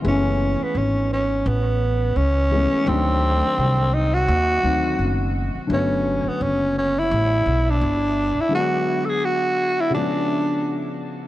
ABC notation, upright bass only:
X:1
M:4/4
L:1/16
Q:"Swing 16ths" 1/4=85
K:F#m
V:1 name="Upright bass" clef=bass
F,,,3 z G,,,4 A,,,4 C,,3 z | D,,3 z =C,,4 _E,,2 D,,2 F,,,3 z | =G,,,3 z F,,,4 A,,,2 B,,,2 G,,,3 z | z16 |]